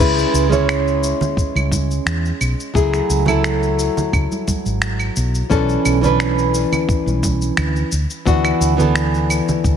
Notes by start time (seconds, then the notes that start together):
Already playing: G#3
0.00 C#2 C#4 E4 B4, crash, shaker
0.19 shaker
0.34 C#2, shaker
0.49 G#3 C#4 E4, low conga, shaker
0.53 C#5
0.69 finger snap, claves, shaker
0.88 shaker
1.04 shaker
1.21 low conga, shaker
1.37 kick, shaker
1.55 C#2, high conga, claves, shaker
1.72 kick, high conga, shaker
1.91 shaker
2.06 E2, finger snap, shaker
2.25 shaker
2.41 B1, claves, shaker
2.60 shaker
2.74 C#2 F#3 A3 E4 G#4, kick, shaker
2.94 finger snap, shaker
3.09 C#2, shaker
3.25 F#3 A3 E4 A4, low conga, claves, shaker
3.44 finger snap, shaker
3.63 shaker
3.79 shaker
3.97 low conga, shaker
4.13 C#2, kick, claves, shaker
4.32 high conga, shaker
4.48 kick, high conga, shaker
4.66 G#1, shaker
4.82 finger snap, shaker
5.00 claves, shaker
5.16 B1, shaker
5.35 shaker
5.50 B1 E3 C#4 D4 A4, kick, shaker
5.69 shaker
5.85 B1, claves, shaker
6.01 E3 C#4 D4, low conga, shaker
6.05 B4
6.20 finger snap, shaker
6.38 shaker
6.55 shaker
6.72 low conga, claves, shaker
6.89 kick, shaker
7.06 B1, high conga, shaker
7.23 kick, high conga, shaker
7.42 shaker
7.57 D2, finger snap, claves, shaker
7.76 shaker
7.92 D2, shaker
8.10 shaker
8.25 D2 E3 B3 D4 F#4, kick, shaker
8.45 finger snap, claves, shaker
8.61 D2, shaker
8.77 E3 B3 D4, low conga, shaker
8.81 A4
8.96 finger snap, shaker
9.14 shaker
9.30 claves, shaker
9.48 low conga, shaker
9.64 D2, kick, shaker